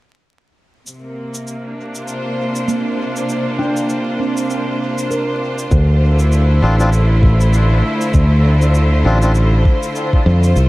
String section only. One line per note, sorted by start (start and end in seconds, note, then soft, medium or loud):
0.87 5.72 C3 medium
1.02 5.71 A#3 medium
1.64 7.67 D4 medium
1.99 10.69 F4 medium
2.06 10.69 C5 medium
5.72 10.56 D3 medium
6.08 10.56 A3 medium
6.08 10.56 E4 medium
10.56 10.69 C3 medium